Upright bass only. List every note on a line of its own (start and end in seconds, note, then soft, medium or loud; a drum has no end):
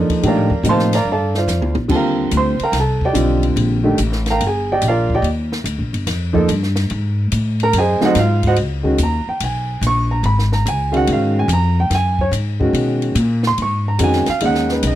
0.09 muted upright bass stroke soft
0.23 0.36 A#2 medium
0.36 0.49 A2 medium
0.50 0.63 F2 medium
0.63 1.04 A2 medium
1.05 1.46 G2 medium
1.48 1.61 F2 medium
1.61 1.75 D2 medium
1.75 1.88 A#1 medium
1.89 2.30 D#2 medium
2.32 2.58 D2 loud
2.60 muted upright bass stroke soft
2.72 3.13 C2 medium
3.14 3.55 B1 medium
3.56 3.97 A#1 medium
3.99 4.39 A1 loud
4.41 4.81 G1 medium
4.82 5.22 A#1 medium
5.22 5.63 D#2 medium
5.64 5.80 D2 medium
5.79 5.92 A#1 medium
5.93 6.06 G1 medium
6.07 6.47 F2 medium
6.48 6.89 G2 medium
6.91 7.31 G#2 medium
7.32 7.72 A2 medium
7.73 7.99 F#2 medium
8.01 muted upright bass stroke soft
8.15 8.56 G#2 loud
8.57 8.97 C#2 medium
8.98 9.25 D#2 medium
9.27 muted upright bass stroke soft
9.40 9.81 B1 medium
9.81 10.22 A#1 medium
10.23 10.64 G#1 medium
10.66 11.06 C#2 medium
11.07 11.47 G#2 medium
11.48 11.89 F2 loud
11.90 12.31 F#2 medium
12.31 12.72 G#2 medium
12.73 13.14 B2 medium
13.15 13.56 A#2 loud
13.58 13.98 G#2 medium
13.99 14.25 F2 medium
14.28 muted upright bass stroke soft
14.41 14.81 D#2 medium
14.83 14.95 B1 medium